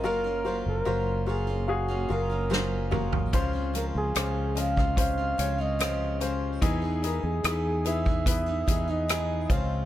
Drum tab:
HH |----------------|x-x-x-x-x-x-x-x-|x-x-x-x-x-x-x-x-|
SD |------------o---|----r--r----r---|----r-------r---|
T2 |--------------o-|----------------|----------------|
FT |---------------o|----------------|----------------|
BD |----------------|o------oo-------|o------oo-o---o-|